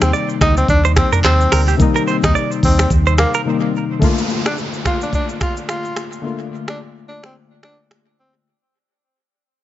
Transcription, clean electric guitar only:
0.13 0.28 D5 medium
0.85 0.91 C5 medium
1.13 1.19 A#4 medium
1.24 1.33 C5 medium
1.52 1.60 A#4 medium
1.68 1.74 G4 medium
1.96 2.02 A#4 medium
2.08 2.16 C5 medium
2.35 2.50 D5 medium
3.07 3.13 C5 medium
3.35 3.41 A#4 medium

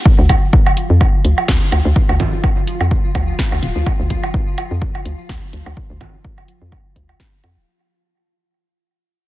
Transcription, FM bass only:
0.19 0.35 D2 loud
0.90 1.06 F2 medium
1.25 1.34 D2 medium
1.48 1.58 D2 medium
1.72 1.81 D2 medium
1.85 1.93 D2 loud
2.09 2.25 D2 loud
2.81 2.97 F2 medium
3.15 3.33 D2 medium
3.52 3.60 D2 medium
3.63 3.72 D1 medium
3.76 3.83 D2 medium
4.00 4.16 D2 loud
4.71 4.87 F2 medium
5.06 5.15 D2 medium
5.29 5.39 D2 medium
5.53 5.62 D2 medium
5.66 5.74 D2 loud
5.90 6.06 D2 loud
6.62 6.78 F2 medium
6.96 7.14 D2 medium
7.44 7.58 F2 medium
7.57 7.64 D1 medium

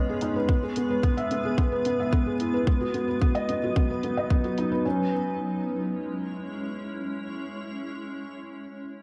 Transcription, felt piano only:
0.00 0.50 B3 medium
0.00 0.09 G#4 medium
0.00 0.36 B4 medium
0.00 0.50 D#5 medium
0.09 0.16 G#4 medium
0.22 0.35 D#4 medium
0.36 0.48 B4 medium
0.50 0.62 B3 medium
0.63 0.76 G#4 medium
0.77 0.89 B3 medium
0.90 0.98 B4 medium
1.03 1.16 B3 medium
1.17 1.30 E5 medium
1.31 1.39 B3 medium
1.45 1.57 G#4 medium
1.59 1.71 B3 medium
1.72 1.85 B4 medium
1.86 1.98 B3 medium
2.00 2.07 E5 medium
2.13 2.26 B3 medium
2.26 2.34 G#4 medium
2.40 2.53 E4 medium
2.54 2.66 B4 medium
2.67 2.80 B3 medium
2.81 2.93 F#4 medium
2.94 3.07 B3 medium
3.08 3.15 B4 medium
3.21 3.34 B3 medium
3.35 3.48 D#5 medium
3.50 3.57 B3 medium
3.63 3.76 F#4 medium
3.77 3.89 B3 medium
3.90 4.03 B4 medium
4.04 4.16 B3 medium
4.17 4.25 D#5 medium
4.31 4.44 B3 medium
4.45 4.52 F#4 medium
4.58 4.71 D#4 medium
4.72 4.84 B4 medium
4.85 5.11 C#4 medium

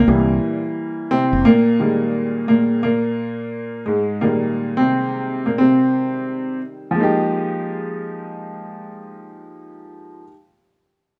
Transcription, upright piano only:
0.00 0.60 A#2 medium
0.08 1.41 E3 medium
0.08 1.42 G3 medium
0.08 1.42 A#3 medium
1.11 1.43 C3 medium
1.11 1.43 C4 medium
1.45 2.45 A#2 medium
1.45 1.80 A#3 medium
1.80 2.79 D#3 soft
1.80 2.79 G3 soft
1.80 2.79 G#3 soft
1.80 2.47 A#3 medium
2.48 2.81 A#2 medium
2.48 2.81 A#3 medium
2.83 3.83 A#2 medium
2.83 3.82 A#3 medium
3.86 4.19 G#2 medium
3.86 4.18 G#3 medium
4.22 4.75 A#2 medium
4.22 6.93 D#3 soft
4.22 6.93 G3 soft
4.22 6.93 G#3 soft
4.22 5.44 A#3 medium
4.77 5.43 C3 medium
4.77 5.48 C4 medium
5.46 5.59 A#2 soft
5.46 5.59 A#3 medium
5.58 6.59 C3 medium
5.58 6.58 C4 medium
6.91 10.21 F3 medium
6.91 10.25 G#3 medium
6.97 10.28 A#3 medium
6.97 10.30 D#4 medium
7.03 10.33 G4 medium

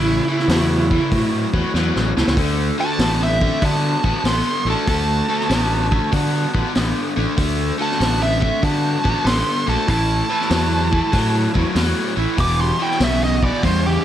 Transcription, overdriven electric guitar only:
0.00 0.24 A2 medium
0.00 0.24 E3 medium
0.28 0.47 A2 medium
0.28 0.47 E3 medium
0.49 0.86 A2 medium
0.49 0.87 F#3 medium
0.90 1.09 A2 medium
0.90 1.09 E3 medium
1.11 1.49 A2 medium
1.11 1.49 F#3 medium
1.53 1.72 A2 medium
1.53 1.72 F#3 medium
1.74 2.12 A2 medium
1.74 2.12 F#3 medium
2.17 2.35 A2 medium
2.17 2.35 E3 medium
2.38 2.75 D3 medium
2.38 2.75 A3 medium
2.78 2.97 D3 medium
2.78 2.97 A3 medium
3.00 3.37 D3 medium
3.00 3.37 B3 medium
3.41 3.60 D3 medium
3.41 3.60 A3 medium
3.62 3.99 D3 medium
3.62 4.00 B3 medium
4.04 4.22 D3 medium
4.04 4.22 B3 medium
4.25 4.62 D3 medium
4.25 4.62 B3 loud
4.66 4.85 D3 medium
4.66 4.85 A3 medium
4.87 5.25 D3 medium
4.87 5.25 A3 medium
5.29 5.47 D3 medium
5.29 5.47 A3 medium
5.50 5.87 D3 medium
5.50 5.87 B3 medium
5.91 6.10 D3 medium
5.91 6.10 A3 medium
6.11 6.49 D3 medium
6.11 6.49 B3 medium
6.54 6.72 D3 medium
6.54 6.72 B3 medium
6.75 7.12 D3 medium
6.75 7.12 B3 medium
7.16 7.35 D3 medium
7.16 7.35 A3 medium
7.37 7.75 D3 medium
7.37 7.75 A3 medium
7.78 7.97 D3 medium
7.78 7.97 A3 medium
7.99 8.37 D3 medium
7.99 8.37 B3 loud
8.40 8.60 D3 medium
8.40 8.60 A3 medium
8.62 9.00 D3 medium
8.62 9.00 B3 medium
9.04 9.23 D3 medium
9.04 9.23 B3 medium
9.24 9.62 D3 medium
9.24 9.62 B3 medium
9.66 9.85 D3 medium
9.66 9.86 A3 medium
9.87 10.25 A2 medium
9.87 10.25 E3 medium
10.30 10.48 A2 medium
10.30 10.48 E3 medium
10.50 10.87 A2 medium
10.50 10.88 F#3 medium
10.91 11.10 A2 medium
10.91 11.10 E3 medium
11.12 11.50 A2 medium
11.12 11.50 F#3 medium
11.54 11.73 A2 medium
11.54 11.73 F#3 medium
11.75 12.13 A2 medium
11.75 12.13 F#3 medium
12.16 12.35 A2 medium
12.16 12.36 E3 medium
12.37 12.75 E2 medium
12.37 12.75 B2 loud
12.79 12.98 E2 medium
12.79 12.98 B2 medium
13.00 13.38 E2 medium
13.00 13.38 C#3 loud
13.42 13.61 E2 medium
13.42 13.61 B2 medium
13.63 14.00 E2 medium
13.63 14.01 C#3 medium

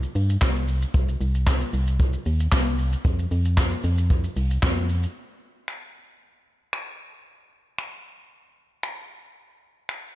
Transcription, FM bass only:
0.15 0.37 G2 loud
0.42 0.85 C2 loud
0.94 1.16 C2 loud
1.21 1.64 C2 loud
1.73 2.17 C2 loud
2.26 2.48 D#2 loud
2.52 2.96 C2 loud
3.05 3.27 F2 loud
3.31 3.75 F2 loud
3.84 4.27 F2 loud
4.36 4.58 C2 medium
4.63 5.06 F2 loud

